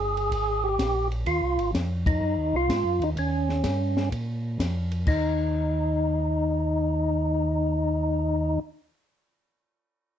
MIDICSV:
0, 0, Header, 1, 4, 480
1, 0, Start_track
1, 0, Tempo, 476190
1, 1275, Time_signature, 4, 2, 24, 8
1, 10271, End_track
2, 0, Start_track
2, 0, Title_t, "Tonewheel organ"
2, 0, Program_c, 0, 16
2, 0, Note_on_c, 0, 68, 104
2, 642, Note_on_c, 0, 67, 102
2, 694, Note_off_c, 0, 68, 0
2, 1088, Note_off_c, 0, 67, 0
2, 1278, Note_on_c, 0, 65, 104
2, 1723, Note_off_c, 0, 65, 0
2, 2083, Note_on_c, 0, 63, 85
2, 2576, Note_off_c, 0, 63, 0
2, 2583, Note_on_c, 0, 65, 122
2, 3058, Note_on_c, 0, 63, 87
2, 3066, Note_off_c, 0, 65, 0
2, 3123, Note_off_c, 0, 63, 0
2, 3212, Note_on_c, 0, 61, 79
2, 4124, Note_off_c, 0, 61, 0
2, 5118, Note_on_c, 0, 63, 78
2, 8665, Note_off_c, 0, 63, 0
2, 10271, End_track
3, 0, Start_track
3, 0, Title_t, "Tonewheel organ"
3, 0, Program_c, 1, 16
3, 0, Note_on_c, 1, 31, 80
3, 300, Note_off_c, 1, 31, 0
3, 314, Note_on_c, 1, 32, 80
3, 780, Note_off_c, 1, 32, 0
3, 788, Note_on_c, 1, 34, 78
3, 1257, Note_off_c, 1, 34, 0
3, 1269, Note_on_c, 1, 39, 82
3, 1426, Note_on_c, 1, 36, 50
3, 1427, Note_off_c, 1, 39, 0
3, 1590, Note_off_c, 1, 36, 0
3, 1591, Note_on_c, 1, 32, 61
3, 1742, Note_off_c, 1, 32, 0
3, 1750, Note_on_c, 1, 41, 85
3, 2218, Note_off_c, 1, 41, 0
3, 2227, Note_on_c, 1, 42, 77
3, 2386, Note_off_c, 1, 42, 0
3, 2390, Note_on_c, 1, 39, 48
3, 2550, Note_on_c, 1, 36, 63
3, 2553, Note_off_c, 1, 39, 0
3, 2702, Note_off_c, 1, 36, 0
3, 2708, Note_on_c, 1, 44, 86
3, 2858, Note_on_c, 1, 42, 53
3, 2867, Note_off_c, 1, 44, 0
3, 3016, Note_on_c, 1, 39, 57
3, 3027, Note_off_c, 1, 42, 0
3, 3174, Note_off_c, 1, 39, 0
3, 3186, Note_on_c, 1, 39, 85
3, 3656, Note_off_c, 1, 39, 0
3, 3667, Note_on_c, 1, 43, 83
3, 4137, Note_off_c, 1, 43, 0
3, 4147, Note_on_c, 1, 46, 77
3, 4617, Note_off_c, 1, 46, 0
3, 4631, Note_on_c, 1, 41, 82
3, 5099, Note_off_c, 1, 41, 0
3, 5105, Note_on_c, 1, 39, 87
3, 8652, Note_off_c, 1, 39, 0
3, 10271, End_track
4, 0, Start_track
4, 0, Title_t, "Drums"
4, 172, Note_on_c, 9, 51, 44
4, 273, Note_off_c, 9, 51, 0
4, 317, Note_on_c, 9, 36, 23
4, 321, Note_on_c, 9, 51, 65
4, 418, Note_off_c, 9, 36, 0
4, 422, Note_off_c, 9, 51, 0
4, 795, Note_on_c, 9, 36, 23
4, 798, Note_on_c, 9, 38, 62
4, 799, Note_on_c, 9, 44, 63
4, 799, Note_on_c, 9, 51, 67
4, 896, Note_off_c, 9, 36, 0
4, 899, Note_off_c, 9, 38, 0
4, 900, Note_off_c, 9, 44, 0
4, 900, Note_off_c, 9, 51, 0
4, 1125, Note_on_c, 9, 51, 44
4, 1226, Note_off_c, 9, 51, 0
4, 1272, Note_on_c, 9, 51, 56
4, 1273, Note_on_c, 9, 36, 20
4, 1373, Note_off_c, 9, 51, 0
4, 1374, Note_off_c, 9, 36, 0
4, 1600, Note_on_c, 9, 51, 42
4, 1701, Note_off_c, 9, 51, 0
4, 1756, Note_on_c, 9, 36, 21
4, 1760, Note_on_c, 9, 38, 63
4, 1761, Note_on_c, 9, 44, 51
4, 1761, Note_on_c, 9, 51, 59
4, 1856, Note_off_c, 9, 36, 0
4, 1861, Note_off_c, 9, 38, 0
4, 1862, Note_off_c, 9, 44, 0
4, 1862, Note_off_c, 9, 51, 0
4, 2079, Note_on_c, 9, 36, 80
4, 2084, Note_on_c, 9, 51, 69
4, 2180, Note_off_c, 9, 36, 0
4, 2185, Note_off_c, 9, 51, 0
4, 2714, Note_on_c, 9, 36, 24
4, 2717, Note_on_c, 9, 38, 62
4, 2718, Note_on_c, 9, 44, 55
4, 2718, Note_on_c, 9, 51, 60
4, 2815, Note_off_c, 9, 36, 0
4, 2818, Note_off_c, 9, 38, 0
4, 2819, Note_off_c, 9, 44, 0
4, 2819, Note_off_c, 9, 51, 0
4, 3041, Note_on_c, 9, 51, 46
4, 3142, Note_off_c, 9, 51, 0
4, 3193, Note_on_c, 9, 36, 17
4, 3194, Note_on_c, 9, 51, 57
4, 3293, Note_off_c, 9, 36, 0
4, 3295, Note_off_c, 9, 51, 0
4, 3520, Note_on_c, 9, 38, 41
4, 3621, Note_off_c, 9, 38, 0
4, 3666, Note_on_c, 9, 38, 62
4, 3667, Note_on_c, 9, 44, 54
4, 3667, Note_on_c, 9, 51, 70
4, 3671, Note_on_c, 9, 36, 21
4, 3767, Note_off_c, 9, 38, 0
4, 3768, Note_off_c, 9, 44, 0
4, 3768, Note_off_c, 9, 51, 0
4, 3771, Note_off_c, 9, 36, 0
4, 4000, Note_on_c, 9, 38, 57
4, 4101, Note_off_c, 9, 38, 0
4, 4153, Note_on_c, 9, 36, 22
4, 4155, Note_on_c, 9, 51, 57
4, 4253, Note_off_c, 9, 36, 0
4, 4256, Note_off_c, 9, 51, 0
4, 4633, Note_on_c, 9, 36, 22
4, 4636, Note_on_c, 9, 38, 63
4, 4637, Note_on_c, 9, 44, 52
4, 4637, Note_on_c, 9, 51, 68
4, 4734, Note_off_c, 9, 36, 0
4, 4737, Note_off_c, 9, 38, 0
4, 4738, Note_off_c, 9, 44, 0
4, 4738, Note_off_c, 9, 51, 0
4, 4954, Note_on_c, 9, 51, 47
4, 5055, Note_off_c, 9, 51, 0
4, 5107, Note_on_c, 9, 49, 59
4, 5110, Note_on_c, 9, 36, 56
4, 5208, Note_off_c, 9, 49, 0
4, 5211, Note_off_c, 9, 36, 0
4, 10271, End_track
0, 0, End_of_file